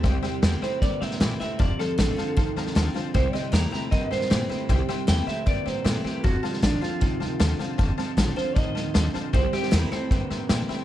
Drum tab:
HH |----p-------p---|----p-------p---|----p-------p---|----p-------p---|
SD |o-o-o-o-o-ooo-o-|o-o-o-o-o-ooo-o-|o-o-o-o-o-ooo-o-|o-o-o-o-o-o-o-o-|
BD |o-------o-------|o-------o-------|o-------o-------|o-------o-------|

HH |----p-------p---|----p-------p---|----p-------p---|
SD |o-ooo-o-o-o-o-o-|o-o-o-o-o-o-o-o-|o-ooo-o-o-o-o-o-|
BD |o-------o-------|o-------o-------|o-------o-------|